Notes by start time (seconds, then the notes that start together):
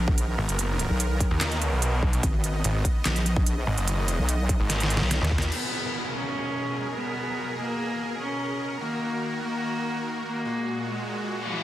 Already playing: A#1 D#3 B3 A#4
0.08 kick
0.18 closed hi-hat
0.38 G#1
0.49 F#1, closed hi-hat
0.59 closed hi-hat
0.79 closed hi-hat
0.90 B1
1.00 closed hi-hat
1.20 kick, closed hi-hat
1.31 D#2
1.41 snare, clap, closed hi-hat
1.52 closed hi-hat
1.62 closed hi-hat
1.72 B1
1.82 closed hi-hat
2.03 kick
2.13 closed hi-hat
2.23 G#1 D#5, kick, closed hi-hat
2.44 closed hi-hat
2.64 G#1, closed hi-hat
2.85 kick, closed hi-hat
3.05 A#1, snare, clap, closed hi-hat
3.16 closed hi-hat
3.26 closed hi-hat
3.36 kick
3.46 closed hi-hat
3.67 G#1
3.78 F#1, closed hi-hat
3.88 closed hi-hat
4.08 closed hi-hat
4.19 B1
4.29 closed hi-hat
4.49 kick, closed hi-hat
4.60 G#1
4.70 snare, closed hi-hat
4.80 snare, closed hi-hat
4.90 closed hi-hat
4.97 B1, snare
5.11 snare, closed hi-hat
5.21 D#2, snare
5.31 kick
5.38 snare, closed hi-hat
5.52 B2 B3 G#4 A#4, crash, downlifter
6.14 C#4
6.96 B3
7.57 A#3
8.19 C#4
8.81 D#3 A#3 F#4
9.42 A#3
10.25 A#3
10.45 A#2 G#3 F#4
10.86 G#3
11.27 reverse cymbal
11.48 E3